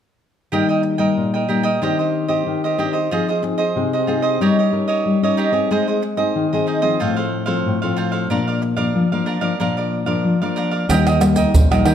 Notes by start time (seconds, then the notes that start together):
0.52 D#3 G3 A#3 D#4 G4 A#4 D#5 G5
0.69 A#4 D#5 G5
0.83 muted cavaquinho stroke
0.98 G3 A#3 D#4 A#4 D#5 G5
1.17 A#2
1.34 A#4 D#5 G5
1.48 G3 A#3 D#4 G4 A#4 D#5 G5
1.63 A#4 D#5 G5
1.82 D#3 C4 D4 G4 C5 D#5
1.99 G4 C5 D#5
2.28 C4 G4 C5 D#5
2.46 D#3
2.64 G4 C5 D#5
2.78 C4 D4 G4 C5 D#5
2.93 G4 C5 D#5
3.11 F3 C4 D#4 F4 G#4 C5 D#5
3.28 G#4 C5 D#5
3.42 C4 D#4 G#4, muted cavaquinho stroke
3.58 G#4 C5 D#5
3.76 C3 C4 D#4 G#4
3.93 G#4 C5 D#5
4.07 C4 D#4 F4 G#4 C5 D#5
4.22 G#4 C5 D#5
4.40 G3 C#4 D#4 G4 A#4 C#5 D#5
4.59 G4 C#5 D#5
4.72 C#4 D#4 A#4
4.88 G4 C#5 D#5
5.05 G3
5.23 C#4 D#4 G4 A#4 C#5 D#5
5.37 D#4 G4 C#5 D#5
5.52 C4 D#4 G4 G#4 C#5 D#5
5.71 G#3 D#4 G#4 C5 D#5
5.87 G#4 C5 D#5
6.02 muted cavaquinho stroke
6.17 C4 D#4 G#4 C5 D#5
6.35 D#3
6.53 C4 D#4 G#4 C5 D#5
6.67 D#4 G#4 C5 D#5
6.82 F3 C4 F4 G#4 C5 D#5
7.00 A2 F4 A4 C5 F5
7.16 A4 C5 F5
7.46 F3 C4 F4 A4 C5 F5
7.66 A2
7.82 F3 C4 F4 A4 C5 F5
7.96 F4 A4 C5 F5
8.12 A4 C5 F5
8.30 A#2 F3 A#3 D4 A#4 D5 F5
8.47 A#4 D5 F5
8.62 muted cavaquinho stroke
8.77 F3 A#3 D4 A#4 D5 F5
8.95 F3
9.12 F3 A#3 D4 A#4 D5 F5
9.26 D4 A#4 D5 F5
9.41 F3 A#3 D4 A#4 D5 F5
9.60 A#2 F3 A#3 D4 A#4 D5 F5
9.77 A#4 D5 F5
10.06 F3 A#3 D4 A#4 D5 F5
10.24 F3
10.42 F3 A#3 D4 A#4 D5 F5
10.56 D4 A#4 D5 F5
10.71 A#4 D5 F5
10.89 D#2 D#3 G3 A#3 D#4 G4 A#4 D#5 G5, pandeiro, tamborim, maracas, surdo
11.07 A#4 D#5 G5, pandeiro, tamborim, maracas
11.20 G3 A#3 D#4, muted cavaquinho stroke, pandeiro, tamborim, maracas
11.36 A#4 D#5 G5, pandeiro, maracas, surdo
11.54 A#1 A#2, pandeiro, maracas, surdo
11.71 G3 A#3 D#4 A#4 D#5 G5, pandeiro, tamborim, maracas
11.85 D#3 G4 A#4 D#5 G5, pandeiro, tamborim